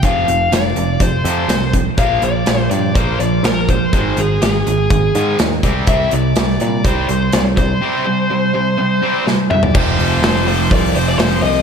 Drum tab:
CC |----------------|----------------|----------------|----------------|
HH |x-x-x-x-x-x-x-x-|x-x-x-x-x-x-x-x-|x-x-x-x-x-x-x-x-|x-x-x-x-x-x-x-x-|
SD |----o-------o---|----o-------o---|----o-------o---|----o-------o---|
T2 |----------------|----------------|----------------|----------------|
FT |----------------|----------------|----------------|----------------|
BD |o-------o-----o-|o-------o-----o-|o-------o-----o-|o-------o-----o-|

CC |----------------|x---------------|
HH |----------------|--o-o-o-o-o-o-o-|
SD |------------o---|----o-------o---|
T2 |--------------o-|----------------|
FT |---------------o|----------------|
BD |----------------|o-------o-------|